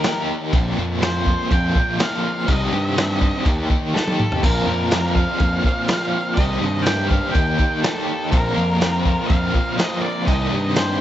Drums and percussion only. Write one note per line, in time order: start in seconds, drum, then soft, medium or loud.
0.04 snare loud
0.04 crash medium
0.53 kick loud
0.53 crash medium
1.02 snare loud
1.02 crash medium
1.26 kick medium
1.51 kick loud
1.51 crash medium
1.75 kick medium
1.99 snare loud
1.99 crash medium
2.48 kick loud
2.48 crash medium
2.98 snare loud
2.98 crash medium
3.21 kick medium
3.46 kick loud
3.46 crash medium
3.70 kick medium
3.96 snare medium
4.07 high tom medium
4.20 mid tom medium
4.32 floor tom medium
4.43 kick loud
4.43 crash loud
4.91 snare loud
4.91 crash medium
5.16 kick medium
5.40 kick medium
5.40 crash medium
5.64 kick medium
5.88 snare loud
5.88 crash medium
6.37 kick loud
6.37 crash medium
6.86 snare loud
6.86 crash medium
7.11 kick medium
7.35 kick loud
7.35 crash medium
7.59 kick medium
7.84 snare loud
7.84 crash medium
8.32 kick loud
8.32 crash medium
8.81 snare loud
8.81 crash medium
9.05 kick medium
9.30 kick loud
9.30 crash medium
9.54 kick medium
9.79 snare loud
9.79 crash medium
10.28 kick loud
10.28 crash medium
10.76 snare loud
10.76 crash medium